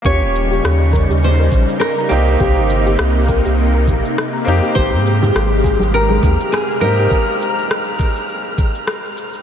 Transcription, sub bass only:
X:1
M:4/4
L:1/16
Q:"Swing 16ths" 1/4=102
K:Ab
V:1 name="Sub bass" clef=bass
E,, E,,,3 E,,3 E,,3 B,,, z3 C,,2 | C,, G,,,3 C,,3 C,,3 B,,, z3 F,, z | A,,, A,,3 A,,,3 A,,,3 E,, z3 A,,2 | z16 |]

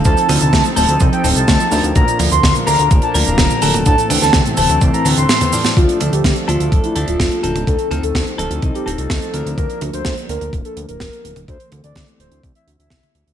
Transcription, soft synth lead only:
X:1
M:4/4
L:1/16
Q:1/4=126
K:Dm
V:1 name="Soft synth lead"
a2 z a2 z a2 z g z a4 z | b2 z c'2 z b2 z a z b4 z | a2 z a2 z a2 z b z c'4 z | F2 z G2 z F2 z E z F4 z |
A2 z A2 z A2 z G z A4 z | B2 z c2 z B2 z A z B4 z | c2 z d2 z c2 z e z e4 z |]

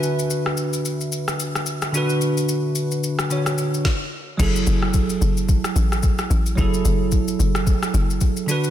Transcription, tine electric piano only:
X:1
M:4/4
L:1/8
Q:"Swing 16ths" 1/4=110
K:F#m
V:1 name="Tine electric piano"
[D,DFB]6- [D,DFB] [D,DFB]- | [D,DFB]4 [D,DFc]2 z2 | [F,EGA]8 | [F,EGA]6- [F,EGA] [D,DFB] |]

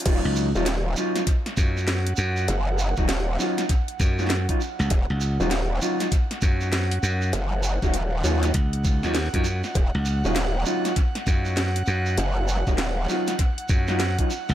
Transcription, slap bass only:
X:1
M:4/4
L:1/16
Q:"Swing 16ths" 1/4=99
K:Ebm
V:1 name="Slap bass" clef=bass
z D,,2 z6 z G,,4 G,,2 | z8 z2 G,,3 z2 D,, | z D,,2 z6 z G,,4 G,,2 | z8 D,,3 E,,2 G,,2 z |
z D,,2 z6 z G,,4 G,,2 | z8 z2 G,,3 z2 D,, |]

